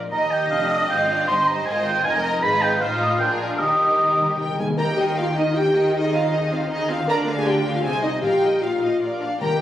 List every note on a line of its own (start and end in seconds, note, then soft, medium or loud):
0.00 0.11 A#1 medium
0.00 0.11 A#2 medium
0.11 0.49 D#2 medium
0.11 0.50 D#2 medium
0.11 0.48 D#4 soft
0.11 0.86 G4 soft
0.11 1.24 D#5 medium
0.11 0.49 D#5 medium
0.11 0.33 A#5 medium
0.31 0.50 G5 medium
0.51 0.89 F1 medium
0.51 0.89 F2 medium
0.51 0.90 D4 soft
0.51 0.89 D#5 soft
0.51 0.72 F5 medium
0.71 0.89 D#5 medium
0.89 1.27 G#1 medium
0.89 1.27 G#2 medium
0.89 1.09 C4 medium
0.89 1.28 F4 medium
0.89 1.28 F5 medium
0.89 1.27 G5 medium
1.09 1.28 D4 medium
1.27 1.65 G1 medium
1.27 1.65 G2 medium
1.27 1.66 D#4 medium
1.27 1.66 G4 medium
1.27 2.03 C5 medium
1.27 1.66 D#5 medium
1.27 1.49 C6 loud
1.47 1.65 A#5 medium
1.66 2.04 G#1 medium
1.66 2.04 G#2 medium
1.66 2.04 F4 medium
1.66 2.03 A#4 medium
1.66 2.04 D#5 medium
1.66 1.74 G#5 medium
1.85 2.04 G5 medium
2.04 2.42 F1 medium
2.04 2.42 F2 medium
2.04 2.41 D#4 medium
2.04 2.43 A#4 medium
2.04 2.42 A#4 medium
2.04 2.42 D#5 medium
2.04 2.13 G#5 loud
2.23 2.44 A#5 medium
2.42 2.78 G#1 medium
2.42 2.79 G#2 medium
2.42 2.78 D#4 medium
2.42 2.78 F4 medium
2.42 2.80 G#4 medium
2.42 2.78 B4 medium
2.42 2.64 B5 loud
2.62 2.83 G5 medium
2.80 3.20 A1 medium
2.80 3.20 A2 medium
2.80 3.19 D#4 medium
2.80 3.57 F4 medium
2.80 3.19 F4 medium
2.80 3.19 C5 medium
2.80 3.00 F5 medium
3.01 3.10 D#5 medium
3.10 3.19 F5 medium
3.19 3.58 A#1 medium
3.19 3.58 A#2 medium
3.19 3.58 D4 medium
3.19 3.58 G#4 medium
3.19 3.57 A#4 medium
3.19 3.33 G5 medium
3.50 3.60 F5 medium
3.58 4.58 D#2 medium
3.58 4.58 D#3 medium
3.58 3.65 D#3 soft
3.58 4.38 D#4 medium
3.58 4.58 G4 medium
3.58 4.37 G4 medium
3.58 4.56 A#4 medium
3.58 4.38 D#5 medium
3.67 3.74 D#3 soft
3.75 3.81 D#3 soft
3.83 3.89 D#3 soft
3.98 4.05 D#3 soft
4.06 4.12 D#3 soft
4.13 4.19 D#3 soft
4.20 4.27 D#3 medium
4.28 4.35 D#3 medium
4.36 4.42 D#3 soft
4.36 4.47 G4 medium
4.36 4.57 G5 medium
4.44 4.50 D#3 medium
4.51 4.57 D#3 medium
4.57 4.66 D#3 medium
4.57 4.77 G#4 medium
4.57 4.66 G#5 medium
4.67 4.74 D#3 medium
4.77 7.04 D#2 medium
4.77 5.32 D#3 medium
4.77 7.04 D#3 medium
4.77 4.96 A#3 medium
4.77 4.96 G4 medium
4.77 4.86 A#4 medium
4.77 4.96 G5 medium
4.77 4.85 A#5 medium
4.97 5.17 D#4 medium
4.97 5.06 G4 medium
4.97 5.17 A#4 medium
4.97 5.17 D#5 soft
4.97 5.17 G5 medium
5.16 5.37 A#3 medium
5.16 5.26 F4 medium
5.16 5.37 G4 soft
5.16 5.25 F5 medium
5.16 5.36 G5 medium
5.36 5.56 D#4 soft
5.36 5.55 D#4 medium
5.36 5.56 A#4 soft
5.36 5.55 D#5 medium
5.55 5.73 A#3 medium
5.55 5.73 G4 medium
5.55 5.94 G4 medium
5.55 5.73 G5 medium
5.55 5.94 G5 medium
5.75 5.93 D#4 medium
5.75 5.94 A#4 medium
5.75 5.93 D#5 medium
5.94 6.51 D#4 medium
5.94 6.12 D#4 medium
5.94 6.12 G#4 medium
5.94 6.51 D#5 medium
5.94 6.12 D#5 medium
6.13 6.32 C4 medium
6.13 6.32 F4 medium
6.13 6.32 F5 medium
6.32 6.51 D#4 medium
6.32 6.51 G#4 medium
6.32 6.51 D#5 medium
6.51 6.70 C4 medium
6.51 6.71 F4 medium
6.51 6.70 F5 medium
6.70 6.88 D#4 medium
6.70 6.88 G#4 medium
6.70 6.88 D#5 medium
6.89 7.08 C4 medium
6.89 7.06 F4 medium
6.89 7.08 F5 medium
7.07 7.83 D2 medium
7.07 7.82 D3 medium
7.07 7.25 D4 medium
7.07 7.25 F4 medium
7.07 7.21 A#4 loud
7.07 7.26 D5 medium
7.07 7.17 A#5 medium
7.26 7.46 A#3 medium
7.26 7.44 D4 medium
7.26 7.47 F5 medium
7.37 7.46 G#4 medium
7.37 7.46 G#5 medium
7.45 7.63 D4 medium
7.45 7.64 F4 medium
7.45 7.58 G4 medium
7.45 7.65 D5 medium
7.45 7.75 G5 medium
7.64 7.84 A#3 medium
7.64 7.84 D4 medium
7.64 7.84 F5 medium
7.74 7.79 F4 medium
7.74 7.84 F5 medium
7.83 8.23 C2 medium
7.83 8.23 C3 medium
7.83 8.01 C4 medium
7.83 7.92 G#4 medium
7.83 8.01 G#4 medium
7.83 8.02 C5 medium
7.83 8.02 G#5 medium
8.02 8.11 D#4 medium
8.02 8.22 D#4 medium
8.02 8.23 C5 medium
8.02 8.22 D#5 medium
8.21 9.21 A#1 medium
8.21 8.78 A#2 medium
8.21 9.21 A#2 medium
8.21 8.41 F4 medium
8.21 8.61 G4 medium
8.21 8.41 A#4 medium
8.21 8.41 F5 medium
8.21 8.62 G5 medium
8.42 8.62 D#4 medium
8.42 8.60 F4 soft
8.42 8.62 D#5 soft
8.61 9.01 F4 medium
8.61 8.80 F4 soft
8.61 8.82 A#4 soft
8.61 8.81 F5 soft
8.61 9.01 F5 medium
8.81 9.01 D#4 soft
8.81 9.00 F4 soft
8.81 9.01 D#5 soft
9.01 9.20 F4 soft
9.01 9.20 A#4 soft
9.01 9.20 D5 soft
9.20 9.41 D4 medium
9.20 9.41 D5 soft
9.20 9.41 F5 soft
9.40 9.61 D#2 medium
9.40 9.61 D#3 medium
9.40 9.59 A#3 medium
9.40 9.59 G4 medium
9.40 9.59 A#4 medium
9.40 9.59 G5 medium
9.40 9.49 A#5 medium